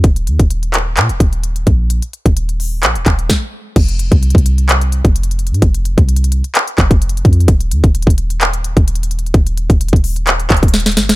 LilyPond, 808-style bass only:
\new Staff \with { instrumentName = "808-style bass" } { \clef bass \time 4/4 \key ees \mixolydian \tempo 4 = 129 ees,,8 ees,16 ees,,4~ ees,,16 bes,16 ees,,16 ees,,4 bes,,8~ | bes,,16 r8 ees,,4~ ees,,16 bes,,16 ees,,16 ees,,8 r4 | f,,8. c,8 c,4. f,,4 aes,16 | f,,8. c,4 r8. f,,4 f,8 |
ees,,8 ees,16 ees,,8 ees,,4. ees,,4~ ees,,16 | ees,,8. ees,,8 ees,,4~ ees,,16 ees,,4 g,,16 ees,,16 | }